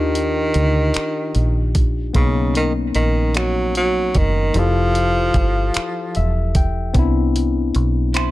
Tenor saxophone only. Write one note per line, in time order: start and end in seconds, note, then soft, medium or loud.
0.00 1.76 D#3 medium
2.16 2.53 C#3 medium
2.57 2.73 D#3 medium
2.95 3.38 D#3 medium
3.36 3.75 F#3 medium
3.77 4.19 F#3 medium
4.17 4.60 D#3 medium
4.58 6.56 F3 medium